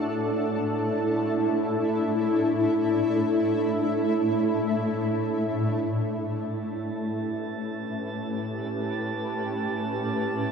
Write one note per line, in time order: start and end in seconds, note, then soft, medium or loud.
0.00 10.52 A2 medium
0.00 10.52 A3 medium
0.00 6.28 D4 medium
0.00 7.81 E4 medium
0.00 0.21 F#4 medium
0.00 7.77 A4 medium
6.25 10.52 A5 medium
6.62 10.52 G4 medium
6.62 10.52 B4 medium
6.78 10.52 C#4 medium